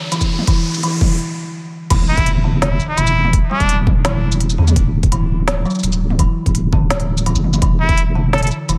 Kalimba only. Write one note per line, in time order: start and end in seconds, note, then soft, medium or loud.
0.12 0.29 E3 medium
0.48 0.65 E3 medium
0.83 1.00 E3 medium
1.90 2.42 E3 medium
2.44 2.61 D3 medium
2.97 3.15 E3 medium
3.51 4.03 G3 medium
4.05 4.57 E3 medium
4.58 4.75 D3 medium
5.12 5.29 E3 medium
5.65 6.17 F#3 medium
6.19 6.71 E3 medium
6.73 6.90 D3 medium
7.26 7.43 E3 medium
7.62 8.14 E3 medium
8.15 8.32 D3 medium
8.69 8.78 E3 medium